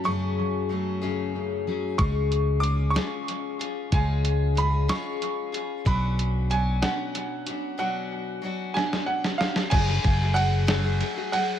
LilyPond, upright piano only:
\new Staff \with { instrumentName = "Upright piano" } { \time 6/8 \key b \dorian \tempo 4. = 62 cis'''2 r4 | cis'''4 d'''8 cis'''4 r8 | gis''4 b''8 cis'''4 r8 | b''4 gis''8 fis''4. |
fis''4. gis''8 fis''8 eis''8 | \key fis \minor gis''4 fis''4. fis''8 | }